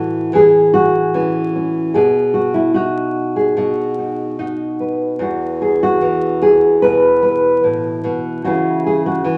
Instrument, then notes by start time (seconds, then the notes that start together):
nylon-string guitar
Already playing: A2 E3 F#4 A4
0.33 E3 G#4
0.74 F#4
1.14 E3 C#4
1.56 C#4
1.94 B2 G#4
2.34 F#4
2.54 E4
2.74 D#4 F#4
3.36 G#4
3.57 B2 F#4
3.98 D#4
4.39 D#4 F#4
4.80 B4
5.19 E2 E3 F#4
5.62 G#4
5.83 F#4
6.02 E3
6.42 G#4
6.82 B2 B4
7.23 B4
7.64 A2
8.04 B2
8.44 C#3 E3 C#4 E4 F#4
8.86 G#4
9.06 F#4
9.24 E3